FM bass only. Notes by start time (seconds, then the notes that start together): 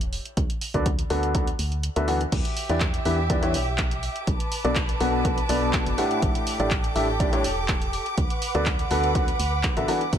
Already playing: E1
0.37 D2
0.74 D2
1.10 D2
1.59 D2
1.96 D2
2.32 E2
2.69 E2
3.05 E2
3.54 B1
4.27 B1
4.65 B1
5.00 B1
5.49 B1
5.86 F#1
6.22 A1
6.60 A1
6.96 A1
7.44 E1
8.18 D2
8.55 D2
8.91 D2
9.40 D2
9.77 A1
10.13 E2